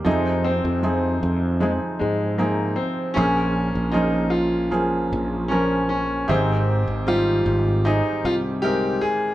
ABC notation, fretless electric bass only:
X:1
M:4/4
L:1/16
Q:1/4=77
K:Fm
V:1 name="Fretless electric bass" clef=bass
F,,3 F,,3 F,,3 z A,,4 z2 | B,,,3 B,,,6- B,,, B,,,6 | A,,,3 A,,,3 A,,,3 z C,,4 z2 |]